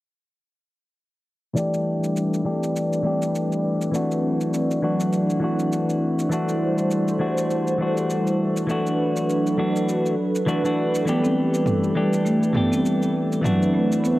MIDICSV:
0, 0, Header, 1, 6, 480
1, 0, Start_track
1, 0, Tempo, 594059
1, 1264, Time_signature, 4, 2, 24, 8
1, 11467, End_track
2, 0, Start_track
2, 0, Title_t, "Singing bowl"
2, 0, Program_c, 0, 14
2, 1255, Note_on_c, 0, 62, 60
2, 1257, Note_on_c, 0, 74, 61
2, 11467, Note_off_c, 0, 62, 0
2, 11467, Note_off_c, 0, 74, 0
2, 11467, End_track
3, 0, Start_track
3, 0, Title_t, "Analog synth pad"
3, 0, Program_c, 1, 89
3, 1260, Note_on_c, 1, 71, 81
3, 1261, Note_on_c, 1, 55, 70
3, 1261, Note_on_c, 1, 69, 63
3, 1262, Note_on_c, 1, 60, 69
3, 3163, Note_off_c, 1, 55, 0
3, 3163, Note_off_c, 1, 69, 0
3, 3179, Note_on_c, 1, 54, 72
3, 3179, Note_on_c, 1, 62, 68
3, 3181, Note_on_c, 1, 64, 63
3, 5070, Note_off_c, 1, 71, 0
3, 5071, Note_off_c, 1, 60, 0
3, 5082, Note_off_c, 1, 54, 0
3, 5082, Note_off_c, 1, 62, 0
3, 5099, Note_on_c, 1, 55, 75
3, 5099, Note_on_c, 1, 69, 66
3, 5104, Note_on_c, 1, 72, 80
3, 6990, Note_off_c, 1, 64, 0
3, 7002, Note_off_c, 1, 55, 0
3, 7005, Note_off_c, 1, 72, 0
3, 7028, Note_on_c, 1, 71, 77
3, 7029, Note_on_c, 1, 62, 66
3, 7035, Note_on_c, 1, 54, 72
3, 8927, Note_off_c, 1, 62, 0
3, 8930, Note_off_c, 1, 54, 0
3, 8944, Note_on_c, 1, 55, 78
3, 10829, Note_off_c, 1, 69, 0
3, 10834, Note_off_c, 1, 71, 0
3, 10845, Note_off_c, 1, 55, 0
3, 10860, Note_on_c, 1, 62, 73
3, 10862, Note_on_c, 1, 54, 78
3, 10862, Note_on_c, 1, 71, 84
3, 10863, Note_on_c, 1, 60, 69
3, 10863, Note_on_c, 1, 64, 65
3, 11467, Note_off_c, 1, 54, 0
3, 11467, Note_off_c, 1, 60, 0
3, 11467, Note_off_c, 1, 62, 0
3, 11467, Note_off_c, 1, 64, 0
3, 11467, Note_off_c, 1, 71, 0
3, 11467, End_track
4, 0, Start_track
4, 0, Title_t, "Clean electric guitar"
4, 0, Program_c, 2, 27
4, 1248, Note_on_c, 2, 52, 73
4, 1256, Note_on_c, 2, 57, 64
4, 1266, Note_on_c, 2, 62, 65
4, 1280, Note_on_c, 2, 67, 80
4, 1951, Note_off_c, 2, 52, 0
4, 1955, Note_off_c, 2, 57, 0
4, 1960, Note_off_c, 2, 62, 0
4, 1967, Note_off_c, 2, 67, 0
4, 1974, Note_on_c, 2, 52, 60
4, 1981, Note_on_c, 2, 57, 48
4, 1983, Note_on_c, 2, 62, 58
4, 1988, Note_on_c, 2, 67, 68
4, 2435, Note_off_c, 2, 52, 0
4, 2436, Note_off_c, 2, 57, 0
4, 2439, Note_off_c, 2, 62, 0
4, 2441, Note_off_c, 2, 67, 0
4, 2445, Note_on_c, 2, 52, 74
4, 2454, Note_on_c, 2, 57, 69
4, 2465, Note_on_c, 2, 62, 69
4, 2477, Note_on_c, 2, 67, 82
4, 3150, Note_off_c, 2, 52, 0
4, 3154, Note_off_c, 2, 57, 0
4, 3160, Note_off_c, 2, 62, 0
4, 3164, Note_on_c, 2, 52, 69
4, 3166, Note_off_c, 2, 67, 0
4, 3178, Note_on_c, 2, 57, 66
4, 3187, Note_on_c, 2, 62, 65
4, 3198, Note_on_c, 2, 66, 74
4, 3869, Note_off_c, 2, 52, 0
4, 3876, Note_off_c, 2, 57, 0
4, 3881, Note_off_c, 2, 62, 0
4, 3886, Note_off_c, 2, 66, 0
4, 3897, Note_on_c, 2, 52, 66
4, 3901, Note_on_c, 2, 57, 60
4, 3907, Note_on_c, 2, 62, 60
4, 3912, Note_on_c, 2, 66, 73
4, 4353, Note_off_c, 2, 52, 0
4, 4358, Note_off_c, 2, 57, 0
4, 4361, Note_off_c, 2, 62, 0
4, 4363, Note_off_c, 2, 66, 0
4, 4363, Note_on_c, 2, 52, 78
4, 4372, Note_on_c, 2, 57, 63
4, 4383, Note_on_c, 2, 62, 65
4, 4396, Note_on_c, 2, 66, 82
4, 5069, Note_off_c, 2, 52, 0
4, 5073, Note_off_c, 2, 57, 0
4, 5079, Note_off_c, 2, 62, 0
4, 5085, Note_off_c, 2, 66, 0
4, 5085, Note_on_c, 2, 52, 72
4, 5095, Note_on_c, 2, 57, 64
4, 5105, Note_on_c, 2, 62, 69
4, 5117, Note_on_c, 2, 66, 76
4, 5789, Note_off_c, 2, 52, 0
4, 5795, Note_off_c, 2, 57, 0
4, 5800, Note_off_c, 2, 62, 0
4, 5806, Note_off_c, 2, 66, 0
4, 5811, Note_on_c, 2, 52, 68
4, 5816, Note_on_c, 2, 57, 57
4, 5821, Note_on_c, 2, 62, 59
4, 5827, Note_on_c, 2, 66, 75
4, 6272, Note_off_c, 2, 52, 0
4, 6275, Note_off_c, 2, 57, 0
4, 6278, Note_off_c, 2, 62, 0
4, 6281, Note_off_c, 2, 66, 0
4, 6286, Note_on_c, 2, 52, 74
4, 6297, Note_on_c, 2, 57, 68
4, 6308, Note_on_c, 2, 62, 65
4, 6320, Note_on_c, 2, 66, 81
4, 6990, Note_off_c, 2, 52, 0
4, 6996, Note_off_c, 2, 57, 0
4, 7001, Note_off_c, 2, 62, 0
4, 7005, Note_on_c, 2, 52, 67
4, 7007, Note_off_c, 2, 66, 0
4, 7017, Note_on_c, 2, 57, 67
4, 7029, Note_on_c, 2, 62, 65
4, 7038, Note_on_c, 2, 66, 82
4, 7709, Note_off_c, 2, 52, 0
4, 7716, Note_off_c, 2, 57, 0
4, 7722, Note_off_c, 2, 62, 0
4, 7726, Note_off_c, 2, 66, 0
4, 7735, Note_on_c, 2, 52, 60
4, 7740, Note_on_c, 2, 57, 62
4, 7744, Note_on_c, 2, 62, 54
4, 7750, Note_on_c, 2, 66, 73
4, 8194, Note_off_c, 2, 52, 0
4, 8197, Note_off_c, 2, 57, 0
4, 8199, Note_off_c, 2, 62, 0
4, 8202, Note_off_c, 2, 66, 0
4, 8455, Note_on_c, 2, 52, 83
4, 8462, Note_on_c, 2, 57, 75
4, 8466, Note_on_c, 2, 62, 74
4, 8473, Note_on_c, 2, 66, 89
4, 8576, Note_off_c, 2, 52, 0
4, 8579, Note_off_c, 2, 57, 0
4, 8581, Note_off_c, 2, 62, 0
4, 8585, Note_off_c, 2, 66, 0
4, 8596, Note_on_c, 2, 52, 73
4, 8604, Note_on_c, 2, 57, 61
4, 8607, Note_on_c, 2, 62, 69
4, 8614, Note_on_c, 2, 66, 79
4, 8917, Note_off_c, 2, 52, 0
4, 8919, Note_off_c, 2, 57, 0
4, 8922, Note_off_c, 2, 62, 0
4, 8926, Note_off_c, 2, 66, 0
4, 8930, Note_on_c, 2, 52, 75
4, 8940, Note_on_c, 2, 57, 69
4, 8951, Note_on_c, 2, 62, 65
4, 8961, Note_on_c, 2, 67, 81
4, 9632, Note_off_c, 2, 52, 0
4, 9637, Note_off_c, 2, 57, 0
4, 9643, Note_off_c, 2, 62, 0
4, 9648, Note_off_c, 2, 67, 0
4, 9658, Note_on_c, 2, 52, 65
4, 9663, Note_on_c, 2, 57, 57
4, 9668, Note_on_c, 2, 62, 61
4, 9672, Note_on_c, 2, 67, 71
4, 10116, Note_off_c, 2, 52, 0
4, 10119, Note_off_c, 2, 57, 0
4, 10121, Note_off_c, 2, 62, 0
4, 10123, Note_off_c, 2, 67, 0
4, 10125, Note_on_c, 2, 52, 76
4, 10136, Note_on_c, 2, 57, 69
4, 10147, Note_on_c, 2, 62, 66
4, 10156, Note_on_c, 2, 67, 81
4, 10830, Note_off_c, 2, 52, 0
4, 10835, Note_off_c, 2, 57, 0
4, 10838, Note_on_c, 2, 52, 71
4, 10841, Note_off_c, 2, 62, 0
4, 10845, Note_off_c, 2, 67, 0
4, 10848, Note_on_c, 2, 57, 68
4, 10861, Note_on_c, 2, 62, 67
4, 10871, Note_on_c, 2, 66, 77
4, 11467, Note_off_c, 2, 52, 0
4, 11467, Note_off_c, 2, 57, 0
4, 11467, Note_off_c, 2, 62, 0
4, 11467, Note_off_c, 2, 66, 0
4, 11467, End_track
5, 0, Start_track
5, 0, Title_t, "Marimba"
5, 0, Program_c, 3, 12
5, 8940, Note_on_c, 3, 59, 65
5, 9020, Note_off_c, 3, 59, 0
5, 9079, Note_on_c, 3, 60, 69
5, 9546, Note_off_c, 3, 60, 0
5, 9660, Note_on_c, 3, 55, 70
5, 9740, Note_off_c, 3, 55, 0
5, 9900, Note_on_c, 3, 57, 70
5, 10032, Note_off_c, 3, 57, 0
5, 10137, Note_on_c, 3, 59, 69
5, 10218, Note_off_c, 3, 59, 0
5, 10278, Note_on_c, 3, 60, 74
5, 10745, Note_off_c, 3, 60, 0
5, 10859, Note_on_c, 3, 54, 69
5, 10939, Note_off_c, 3, 54, 0
5, 11101, Note_on_c, 3, 57, 65
5, 11232, Note_off_c, 3, 57, 0
5, 11341, Note_on_c, 3, 59, 77
5, 11421, Note_off_c, 3, 59, 0
5, 11467, End_track
6, 0, Start_track
6, 0, Title_t, "Drums"
6, 1266, Note_on_c, 9, 82, 49
6, 1347, Note_off_c, 9, 82, 0
6, 1403, Note_on_c, 9, 82, 30
6, 1484, Note_off_c, 9, 82, 0
6, 1645, Note_on_c, 9, 82, 54
6, 1725, Note_off_c, 9, 82, 0
6, 1748, Note_on_c, 9, 82, 47
6, 1829, Note_off_c, 9, 82, 0
6, 1887, Note_on_c, 9, 82, 28
6, 1968, Note_off_c, 9, 82, 0
6, 2127, Note_on_c, 9, 82, 58
6, 2207, Note_off_c, 9, 82, 0
6, 2231, Note_on_c, 9, 82, 46
6, 2312, Note_off_c, 9, 82, 0
6, 2367, Note_on_c, 9, 82, 29
6, 2447, Note_off_c, 9, 82, 0
6, 2603, Note_on_c, 9, 82, 58
6, 2684, Note_off_c, 9, 82, 0
6, 2708, Note_on_c, 9, 82, 46
6, 2789, Note_off_c, 9, 82, 0
6, 2846, Note_on_c, 9, 82, 27
6, 2927, Note_off_c, 9, 82, 0
6, 3084, Note_on_c, 9, 82, 58
6, 3165, Note_off_c, 9, 82, 0
6, 3187, Note_on_c, 9, 82, 53
6, 3268, Note_off_c, 9, 82, 0
6, 3324, Note_on_c, 9, 82, 30
6, 3405, Note_off_c, 9, 82, 0
6, 3562, Note_on_c, 9, 82, 60
6, 3643, Note_off_c, 9, 82, 0
6, 3667, Note_on_c, 9, 82, 53
6, 3747, Note_off_c, 9, 82, 0
6, 3805, Note_on_c, 9, 82, 30
6, 3886, Note_off_c, 9, 82, 0
6, 4043, Note_on_c, 9, 82, 59
6, 4124, Note_off_c, 9, 82, 0
6, 4144, Note_on_c, 9, 82, 47
6, 4225, Note_off_c, 9, 82, 0
6, 4283, Note_on_c, 9, 82, 31
6, 4364, Note_off_c, 9, 82, 0
6, 4521, Note_on_c, 9, 82, 59
6, 4602, Note_off_c, 9, 82, 0
6, 4627, Note_on_c, 9, 82, 51
6, 4708, Note_off_c, 9, 82, 0
6, 4764, Note_on_c, 9, 82, 31
6, 4845, Note_off_c, 9, 82, 0
6, 5003, Note_on_c, 9, 82, 59
6, 5084, Note_off_c, 9, 82, 0
6, 5106, Note_on_c, 9, 82, 54
6, 5186, Note_off_c, 9, 82, 0
6, 5241, Note_on_c, 9, 82, 33
6, 5322, Note_off_c, 9, 82, 0
6, 5479, Note_on_c, 9, 82, 57
6, 5560, Note_off_c, 9, 82, 0
6, 5583, Note_on_c, 9, 82, 53
6, 5664, Note_off_c, 9, 82, 0
6, 5720, Note_on_c, 9, 82, 30
6, 5801, Note_off_c, 9, 82, 0
6, 5961, Note_on_c, 9, 82, 61
6, 6042, Note_off_c, 9, 82, 0
6, 6063, Note_on_c, 9, 82, 51
6, 6144, Note_off_c, 9, 82, 0
6, 6201, Note_on_c, 9, 82, 31
6, 6282, Note_off_c, 9, 82, 0
6, 6441, Note_on_c, 9, 82, 64
6, 6522, Note_off_c, 9, 82, 0
6, 6545, Note_on_c, 9, 82, 49
6, 6626, Note_off_c, 9, 82, 0
6, 6683, Note_on_c, 9, 82, 32
6, 6764, Note_off_c, 9, 82, 0
6, 6923, Note_on_c, 9, 82, 61
6, 7004, Note_off_c, 9, 82, 0
6, 7025, Note_on_c, 9, 82, 51
6, 7106, Note_off_c, 9, 82, 0
6, 7165, Note_on_c, 9, 82, 30
6, 7246, Note_off_c, 9, 82, 0
6, 7405, Note_on_c, 9, 82, 57
6, 7486, Note_off_c, 9, 82, 0
6, 7511, Note_on_c, 9, 82, 54
6, 7592, Note_off_c, 9, 82, 0
6, 7647, Note_on_c, 9, 82, 30
6, 7727, Note_off_c, 9, 82, 0
6, 7888, Note_on_c, 9, 82, 60
6, 7969, Note_off_c, 9, 82, 0
6, 7991, Note_on_c, 9, 82, 53
6, 8071, Note_off_c, 9, 82, 0
6, 8130, Note_on_c, 9, 82, 32
6, 8211, Note_off_c, 9, 82, 0
6, 8368, Note_on_c, 9, 82, 61
6, 8449, Note_off_c, 9, 82, 0
6, 8471, Note_on_c, 9, 82, 53
6, 8552, Note_off_c, 9, 82, 0
6, 8608, Note_on_c, 9, 82, 31
6, 8689, Note_off_c, 9, 82, 0
6, 8847, Note_on_c, 9, 82, 65
6, 8928, Note_off_c, 9, 82, 0
6, 8949, Note_on_c, 9, 82, 51
6, 9030, Note_off_c, 9, 82, 0
6, 9086, Note_on_c, 9, 82, 30
6, 9167, Note_off_c, 9, 82, 0
6, 9327, Note_on_c, 9, 82, 60
6, 9407, Note_off_c, 9, 82, 0
6, 9421, Note_on_c, 9, 45, 67
6, 9429, Note_on_c, 9, 82, 51
6, 9502, Note_off_c, 9, 45, 0
6, 9510, Note_off_c, 9, 82, 0
6, 9565, Note_on_c, 9, 82, 28
6, 9645, Note_off_c, 9, 82, 0
6, 9804, Note_on_c, 9, 82, 64
6, 9885, Note_off_c, 9, 82, 0
6, 9908, Note_on_c, 9, 82, 50
6, 9989, Note_off_c, 9, 82, 0
6, 10045, Note_on_c, 9, 82, 29
6, 10126, Note_off_c, 9, 82, 0
6, 10141, Note_on_c, 9, 45, 70
6, 10222, Note_off_c, 9, 45, 0
6, 10286, Note_on_c, 9, 82, 63
6, 10366, Note_off_c, 9, 82, 0
6, 10390, Note_on_c, 9, 82, 52
6, 10470, Note_off_c, 9, 82, 0
6, 10525, Note_on_c, 9, 82, 30
6, 10606, Note_off_c, 9, 82, 0
6, 10765, Note_on_c, 9, 82, 64
6, 10846, Note_off_c, 9, 82, 0
6, 10862, Note_on_c, 9, 45, 76
6, 10870, Note_on_c, 9, 82, 50
6, 10943, Note_off_c, 9, 45, 0
6, 10951, Note_off_c, 9, 82, 0
6, 11007, Note_on_c, 9, 82, 31
6, 11088, Note_off_c, 9, 82, 0
6, 11247, Note_on_c, 9, 82, 58
6, 11328, Note_off_c, 9, 82, 0
6, 11349, Note_on_c, 9, 82, 49
6, 11429, Note_off_c, 9, 82, 0
6, 11467, End_track
0, 0, End_of_file